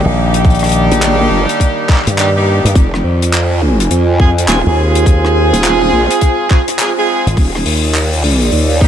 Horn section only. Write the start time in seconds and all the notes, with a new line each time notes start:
0.05 G3 A#3 D4 D#4 G4
1.89 G3 A#3 D4 D#4 G4
2.18 G3 A#3 D4 D#4 G4
2.36 G3 A#3 D4 D#4 G4
4.20 G#3 C4 F4 G#4
4.48 G#3 C4 F4 G#4
4.67 G#3 C4 F4 G#4
6.50 G#3 C4 F4 G#4
6.79 G#3 C4 F4 G#4
6.98 G#3 C4 F4 G#4
8.81 G3 A#3 D4 D#4 G4